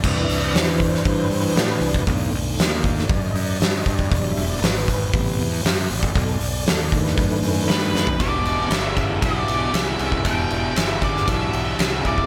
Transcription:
<<
  \new Staff \with { instrumentName = "Lead electric guitar" } { \time 4/4 \key e \minor \tempo 4 = 118 r1 | r1 | r1 | r2. b'4 |
d''4 e''8 e''8 d''4 e''4 | g''4 e''8 d''8 e''4 e''8 d''8 | }
  \new Staff \with { instrumentName = "Tonewheel organ" } { \time 4/4 \key e \minor \tuplet 3/2 { d''8 e''8 d''8 } c''2 r4 | r2 \tuplet 3/2 { <cis'' d''>8 dis''8 d''8 <cis'' d''>8 dis''8 d''8 } | \tuplet 3/2 { d''8 e''8 d''8 } b'2 \tuplet 3/2 { r4 d''8 } | \tuplet 3/2 { a'8 d''8 d''8 a'8 d''8 b'8~ } b'2 |
<d' e' g'>1~ | <d' e' g'>1 | }
  \new Staff \with { instrumentName = "Tonewheel organ" } { \time 4/4 \key e \minor <e d' b'>1 | <dis a d'>4. <dis a d'>8 r2 | <fis g d'>8 r4. <c g b>8 r4. | r4. <dis a d'>2~ <dis a d'>8 |
r1 | r1 | }
  \new Staff \with { instrumentName = "Overdriven electric guitar" } { \clef bass \time 4/4 \key e \minor r1 | r1 | r1 | r1 |
<e, b,>4 <e, cis>8 <e, cis>8 <e, b,>4 <e, cis>8 <e, cis>8 | <e, b,>4 <e, cis>8 <e, cis>8 <e, b,>4 <e, cis>8 <e, cis>8 | }
  \new Staff \with { instrumentName = "Fingered electric bass" } { \clef bass \time 4/4 \key e \minor c,8 c,8 e,4 g,8 g,8 a,8 c,8 | b,,8 b,,8 dis,4 fis,8 fis,8 g,8 g,8 | e,,8 e,,8 gis,,4 a,,8 e,8 fis,8 a,,8 | b,,8 b,,8 dis,4 fis,8 fis,8 g,8 fis,8 |
e,,8 e,,8 g,,4 b,,8 b,,8 c,8 c,8 | e,,8 e,,8 g,,4 b,,8 b,,8 c,8 c,8 | }
  \new DrumStaff \with { instrumentName = "Drums" } \drummode { \time 4/4 <cymc bd>8 hho8 <hho sn>8 <hho bd>16 sn16 <hho bd>8 hho8 <hho sn>8 hho16 bd16 | <hho bd>8 hho8 <hho sn>8 <hho bd>16 sn16 <hho bd>8 hho8 <hho sn>8 <hho bd>16 bd16 | <hho bd>8 hho8 <hho sn>8 <hho bd>8 <hho bd>8 hho8 <hho sn>8 hho16 bd16 | <hho bd>8 hho8 <hho sn>8 <hho bd>16 sn16 <hho bd>8 hho8 <hho sn>8 sn16 tomfh16 |
<bd cymr>8 cymr8 <cymr sn>8 <bd cymr>8 <bd cymr>8 cymr8 <cymr sn>8 cymr16 bd16 | <bd cymr>8 cymr8 <cymr sn>8 <bd cymr>16 sn16 <bd cymr>8 cymr8 <cymr sn>8 <bd cymr>16 bd16 | }
>>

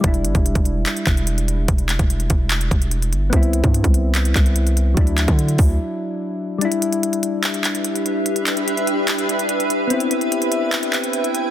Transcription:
<<
  \new Staff \with { instrumentName = "Ambient pad" } { \time 4/4 \key e \minor \tempo 4 = 146 r1 | r1 | r1 | r1 |
<d' g' b' e''>1~ | <d' g' b' e''>1 | <e' e'' g''>1 | }
  \new Staff \with { instrumentName = "Synth keys" } { \time 4/4 \key e \minor <g d' e'>1~ | <g d' e'>1 | <b c' e'>1 | <fis d' e'>1 |
<g d' e'>1~ | <g d' e'>1 | <b c' e'>1 | }
  \new Staff \with { instrumentName = "808-style bass" } { \clef bass \time 4/4 \key e \minor e,,8 g,,16 e,,8 e,,8. r8 e,,4. | e,,8. e,,8. e,,4 e,,4 g,,8 | c,8. g,8 c,4~ c,16 c,4. | d,8. d8. d,8 r2 |
r1 | r1 | r1 | }
  \new DrumStaff \with { instrumentName = "Drums" } \drummode { \time 4/4 <hh bd>16 hh16 hh16 <hh bd>16 hh16 <hh bd>16 hh8 <hc hh>16 hh16 <hc hh bd>16 hh16 hh16 hh16 hh8 | <hh bd>16 hh16 <hc hh>16 <hh bd>16 hh16 hh16 <hh bd>8 <hc hh>16 hh16 <hh bd>16 hh16 hh16 hh16 hh8 | <hh bd>16 hh16 hh16 <hh bd>16 hh16 <hh bd>16 hh8 <hc hh>16 hh16 <hc hh bd>16 hh16 hh16 hh16 hh8 | <hh bd>16 hh16 <hc hh>16 <hh bd>16 hh16 hh16 <hho bd>8 r4 r4 |
hh16 hh16 hh16 hh16 hh16 hh16 hh8 <hc hh>16 hh16 <hc hh>16 hh16 hh16 hh16 hh8 | hh16 hh16 <hc hh>16 hh16 hh16 hh16 hh8 <hc hh>16 hh16 hh16 hh16 hh16 hh16 hh8 | hh16 hh16 hh16 hh16 hh16 hh16 hh8 <hc hh>16 hh16 <hc hh>16 hh16 hh16 hh16 hh8 | }
>>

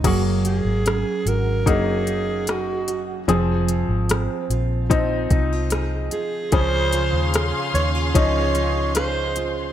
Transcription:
<<
  \new Staff \with { instrumentName = "String section" } { \time 4/4 \key ges \lydian \tempo 4 = 74 r1 | r1 | <des' aes' f'' c'''>1 | }
  \new Staff \with { instrumentName = "Alto saxophone" } { \time 4/4 \key ges \lydian ges'8 aes'4 bes'8 aes'4 ges'8. r16 | r2. r8 aes'8 | c''4 r8 des''8 des''4 c''8. r16 | }
  \new Staff \with { instrumentName = "Nylon-string guitar" } { \time 4/4 \key ges \lydian ges8 ges'8 des'8 ges'8 des'8 ges'8 aes'8 ges'8 | f8 f'8 c'8 f'8 c'8 ees'16 f'16 aes'8 f'8 | des8 f'4 ees'16 f'8. f'8 aes'8 f'8 | }
  \new Staff \with { instrumentName = "Upright piano" } { \time 4/4 \key ges \lydian <ges bes aes'>2 <ges bes ees'>2 | <f c' aes'>2 <f c' ees'>2 | <f des' aes'>2 <f des' ees'>2 | }
  \new Staff \with { instrumentName = "Upright piano" } { \clef bass \time 4/4 \key ges \lydian r1 | r1 | des4. r2 r8 | }
  \new Staff \with { instrumentName = "Fingered electric bass" } { \clef bass \time 4/4 \key ges \lydian ges,,8. aes,,8 r16 aes,,8 ges,,2 | f,,8. aes,,8 r16 bes,,4 c,4 r8 | des,8. ees,8 r16 ees,8 des,2 | }
  \new DrumStaff \with { instrumentName = "Drums" } \drummode { \time 4/4 <cymc hh bd>8 hh8 <hh ss>8 hh8 <hh bd>8 hh8 <hh ss>8 hh8 | hh8 hh8 <hh ss>8 hh8 <hh bd>8 <hh bd>8 <hh ss>8 hh8 | <hh bd>8 hh8 <hh ss>8 hh8 <hh bd>8 hh8 <hh ss>8 hh8 | }
>>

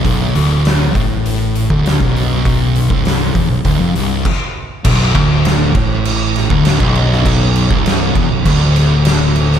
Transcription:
<<
  \new Staff \with { instrumentName = "Distorted electric guitar" } { \clef bass \time 4/4 \key b \minor \tempo 4 = 100 b,,8 d,4 a,4~ a,16 d,8 b,,8.~ | b,,8. c,8. e,16 b,,16 d,16 eis,16 c,8 r4 | b,,8 d,4 a,4~ a,16 d,8 b,,8.~ | b,,8. c,8. e,16 b,,16 d,2 | }
  \new Staff \with { instrumentName = "Distorted electric guitar" } { \clef bass \time 4/4 \key b \minor b,,8 d,4 a,4~ a,16 d,8 b,,8.~ | b,,8. c,8. e,16 b,,16 d,16 eis,16 c,8 r4 | b,,8 d,4 a,4~ a,16 d,8 b,,8.~ | b,,8. c,8. e,16 b,,16 d,2 | }
  \new Staff \with { instrumentName = "Distorted electric guitar" } { \clef bass \time 4/4 \key b \minor r1 | r1 | b,,8 d,4 a,4~ a,16 d,8 b,,8.~ | b,,8. c,8. e,16 b,,16 d,2 | }
  \new Staff \with { instrumentName = "Fingered electric bass" } { \clef bass \time 4/4 \key b \minor b,,,8 d,,4 a,,4~ a,,16 d,,8 b,,,8.~ | b,,,8. c,,8. e,,16 b,,,16 d,,16 eis,,16 c,,8 r4 | b,,,8 d,,4 a,,4~ a,,16 d,,8 b,,,8.~ | b,,,8. c,,8. e,,16 b,,,16 d,,2 | }
  \new DrumStaff \with { instrumentName = "Drums" } \drummode { \time 4/4 <hho bd>8 hho8 <hho sn>8 <hho bd>8 hho8 hho16 bd16 <hho sn>16 bd16 hho8 | <hho bd>8 hho16 bd16 <hho sn>8 <hho bd>8 <hho bd>8 hho8 <cymc bd>4 | <cymc bd>8 <cymc bd>8 <cymc sn>8 <cymc bd>8 cymc8 <cymc sn>16 bd16 <cymc sn>16 bd16 cymc16 sn16 | <cymc bd>8 cymc16 bd16 <cymc sn>8 <cymc bd>8 <cymc bd>8 <cymc sn>8 <cymc sn>8 cymc16 sn16 | }
>>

